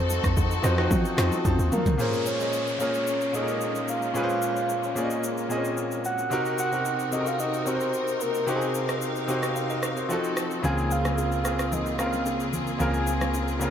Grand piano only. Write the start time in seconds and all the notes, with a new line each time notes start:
Already playing: F3 C4 D#4 F#4 A4 C5
0.62 F3 C4 D#4 F#4 C5
0.76 F3 C4 D#4 F#4 C5
1.16 F3 C4 D#4 F#4 C5
1.45 A5
1.72 F5
1.97 A#2 A#3 C#4 G#4 C5
2.39 A#2 A#3 C#4 G#4 D#5
2.79 A#2 A#3 C#4 G#4 A#4
3.33 A#2 A#3 C#4 G#4 A4
3.42 A#4
4.14 A#2 A#3 C#4 G#4 B4
4.23 C5
4.95 A#2 A#3 C#4 G#4 D5
5.04 D#5
5.49 A#2 A#3 C4 G#4 D#5
5.57 C#4
6.30 C3 C4 D#4 F#4 A#4
6.71 C3 C4 D#4 F#4 A#4
7.11 C3 C4 D#4 F#4 A4
7.21 A#4
7.65 C3 C4 D#4 F#4 A#4
7.75 C5
8.46 C3 C4 D#4 F#4 G4
8.56 G#4
9.27 C3 C4 D#4 F#4 C5
9.56 C5 F5
9.70 A#4 D#5
9.97 F#4 C5
10.09 F3 C4 D#4 F#4 A4
10.62 C#3 A#3 C4 F4 G#4
11.04 C#3 A#3 C4 F4 G#4
11.43 C#3 A#3 C4 F4 G#4
11.98 C#3 A#3 C4 F4 A#4
12.79 C#3 A#3 C4 F4 A#4
13.60 C#3 A#3 C4 F4 A#4